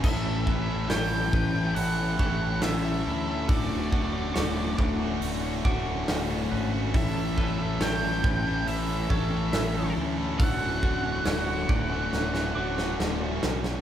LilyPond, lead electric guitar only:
\new Staff \with { instrumentName = "Lead electric guitar" } { \time 4/4 \key d \major \tempo 4 = 70 e''4 g''4 fis''4 e''4 | d''4. r2 r8 | e''4 g''4 e''4. r8 | fis''2. r4 | }